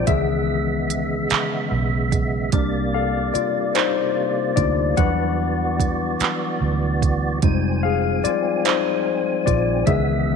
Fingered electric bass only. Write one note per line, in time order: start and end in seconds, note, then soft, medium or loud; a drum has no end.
0.08 1.27 C#2 loud
1.31 muted fingered electric bass stroke soft
1.72 2.49 B1 medium
2.53 3.31 C2 loud
3.35 muted fingered electric bass stroke soft
4.58 4.94 D2 medium
4.98 6.16 E2 loud
6.21 muted fingered electric bass stroke soft
6.61 7.39 D2 medium
7.43 8.20 F1 loud
8.25 muted fingered electric bass stroke soft
9.47 9.84 A#1 medium
9.88 10.36 C#2 loud